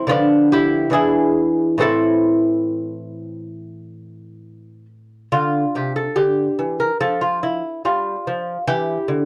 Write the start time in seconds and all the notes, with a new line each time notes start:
0.07 D3 F3 B3 D4
0.52 E4 G4
0.90 E2 E3 D4 G#4
0.94 E4
1.78 A2 E3 C4 A4
1.82 E4
5.32 D3 F4
5.75 C3 G4
5.96 A4
6.16 D3 G4
6.59 E3
6.80 A#4
7.00 F3 A4
7.21 F4
7.43 E4
7.85 G3 F4
8.27 F3
8.67 E3 E4 G4
9.08 D3